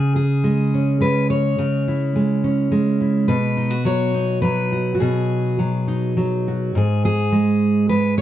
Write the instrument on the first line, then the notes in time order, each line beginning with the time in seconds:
steel-string acoustic guitar
Already playing: C#3 G#4
0.16 G#4
0.44 G#3
0.74 C#4
1.01 G#3 B4
1.30 C#5
1.59 C#3
1.88 E4
2.16 G#3
2.44 C#4
2.72 G#3
3.01 E4
3.28 B2 B4
3.57 D#4
3.70 F#4
3.85 F#3 C#5
4.14 D#4
4.42 F#3 B4
4.72 F#4
4.95 F#4
5.00 B2 G#4
5.59 F#3
5.88 D#4
6.17 F#3
6.48 F#4
6.75 G#2 G#4
7.05 G#4
7.32 G#3
7.89 G#3 B4
8.18 C#5